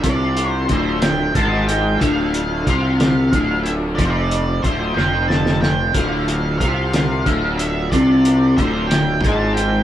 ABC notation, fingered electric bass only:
X:1
M:6/8
L:1/8
Q:3/8=61
K:Dm
V:1 name="Fingered electric bass" clef=bass
C,,2 D,,,2 ^G,,,2 | D,,,2 C,,2 D,,,2 | F,,,2 D,,, F,,,3 | D,,,2 C,,2 D,,,2 |
C,,2 D,,,2 ^G,,,2 |]